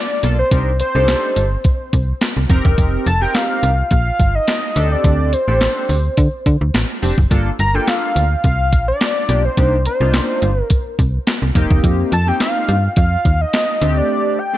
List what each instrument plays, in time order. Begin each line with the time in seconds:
Already playing: analog synth lead D5
0.23 fm bass B1, analog polysynth A#3 D4 F4 A4, closed hi-hat
0.39 analog synth lead C5
0.51 fm bass C2, analog polysynth D4 D#4 G4 A#4, kick, closed hi-hat
0.80 analog synth lead C5, closed hi-hat
0.95 fm bass C2, analog polysynth D4 D#4 G4 A4
1.08 snare, clap, closed hi-hat
1.36 fm bass G1, closed hi-hat
1.64 kick, closed hi-hat
1.93 fm bass C2, kick, closed hi-hat
2.21 snare, clap, closed hi-hat
2.37 fm bass C2
2.49 fm bass F1, analog polysynth C4 D#4 G4 A#4, kick, closed hi-hat
2.65 fm bass E1, kick
2.78 fm bass F1, kick, closed hi-hat
3.06 fm bass F1, analog synth lead A5, closed hi-hat
3.21 analog polysynth C4 D#4 G4 A#4, analog synth lead G5
3.34 analog synth lead F5, snare, clap, closed hi-hat
3.63 fm bass C2, closed hi-hat
3.91 fm bass A#1, analog synth lead F5, kick, closed hi-hat
4.20 fm bass G1, kick, closed hi-hat
4.35 analog synth lead D#5
4.48 snare, clap, closed hi-hat
4.75 fm bass D2, analog polysynth C4 D4 G4 A4, closed hi-hat
4.92 analog synth lead D5
5.04 fm bass D2, kick, closed hi-hat
5.33 analog synth lead C5, closed hi-hat
5.47 fm bass A1, analog polysynth C4 D4 G4 A4
5.61 snare, clap, closed hi-hat
5.89 fm bass D2, open hi-hat
6.17 fm bass D3, kick, closed hi-hat
6.46 fm bass D3, kick, closed hi-hat
6.61 fm bass D2
6.74 fm bass A1, snare, clap, closed hi-hat
7.02 fm bass F1, analog polysynth C4 D4 G4 C5, open hi-hat
7.18 fm bass F#1, kick
7.30 fm bass G1, analog polysynth A#3 D4 F4 A4, kick, closed hi-hat
7.59 fm bass G1, analog synth lead A#5, closed hi-hat
7.74 analog polysynth A#3 D4 F4 A4, analog synth lead G5
7.87 analog synth lead F5, snare, clap, closed hi-hat
8.16 fm bass D2, closed hi-hat
8.44 fm bass C2, analog synth lead F5, kick, closed hi-hat
8.73 fm bass A#1, kick, closed hi-hat
8.88 analog synth lead D5
9.01 snare, clap, closed hi-hat
9.29 fm bass B1, analog polysynth A#3 D4 F4 G4, closed hi-hat
9.45 analog synth lead C5
9.57 fm bass C2, analog polysynth A#3 D4 D#4 G4, kick, closed hi-hat
9.86 analog synth lead C5, closed hi-hat
10.00 fm bass C2, analog polysynth A#3 D4 D#4 F4
10.13 snare, clap, closed hi-hat
10.42 fm bass G1, closed hi-hat
10.61 analog synth lead A#4
10.70 kick, closed hi-hat
10.99 fm bass C2, kick, closed hi-hat
11.27 snare, clap, closed hi-hat
11.42 fm bass C2
11.55 fm bass F1, analog polysynth A#3 C4 D#4 G4, kick, closed hi-hat
11.71 fm bass E1, kick
11.84 fm bass F2, kick, closed hi-hat
12.12 fm bass F2, analog synth lead A5, closed hi-hat
12.26 analog polysynth A#3 C4 D#4 G4, analog synth lead G5
12.40 analog synth lead F5, snare, clap, closed hi-hat
12.69 fm bass G2, closed hi-hat
12.96 fm bass F2, analog synth lead F5, kick, closed hi-hat
13.25 fm bass D#2, kick, closed hi-hat
13.41 analog synth lead D#5
13.53 snare, clap, closed hi-hat
13.81 fm bass D2, analog polysynth A3 C4 D4 G4, closed hi-hat
13.97 analog synth lead D5
14.39 analog synth lead G5
14.53 analog polysynth A3 C4 D4 G4